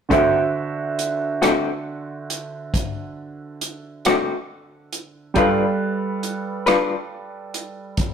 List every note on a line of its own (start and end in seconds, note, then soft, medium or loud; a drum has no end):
0.09 5.30 D3 soft
0.09 0.37 D3 medium
0.09 0.37 A3 medium
0.09 0.38 C4 medium
0.09 5.31 F#4 soft
0.09 0.38 F#4 medium
0.09 5.31 C5 soft
0.09 5.32 E5 medium
0.09 kick medium
0.09 closed hi-hat medium
0.99 closed hi-hat soft
1.42 1.69 D3 soft
1.42 1.68 A3 soft
1.42 1.69 C4 soft
1.42 1.68 F#4 soft
1.42 cross-stick medium
1.42 closed hi-hat medium
2.30 closed hi-hat soft
2.74 kick medium
2.74 closed hi-hat medium
3.61 closed hi-hat soft
4.05 4.32 D3 soft
4.05 4.32 A3 soft
4.05 4.32 C4 soft
4.05 4.32 F#4 medium
4.05 cross-stick medium
4.05 closed hi-hat medium
4.93 closed hi-hat soft
5.34 8.14 G3 medium
5.34 5.62 G3 medium
5.34 5.62 D4 medium
5.34 5.62 F4 medium
5.34 8.14 A4 soft
5.34 8.14 B4 soft
5.34 5.63 B4 medium
5.34 8.14 F5 medium
5.34 kick medium
5.34 closed hi-hat medium
6.23 closed hi-hat soft
6.66 6.93 G3 soft
6.66 6.93 D4 soft
6.66 6.93 F4 medium
6.66 6.93 B4 medium
6.66 cross-stick medium
6.66 closed hi-hat medium
7.54 closed hi-hat soft
7.97 kick medium
7.97 closed hi-hat medium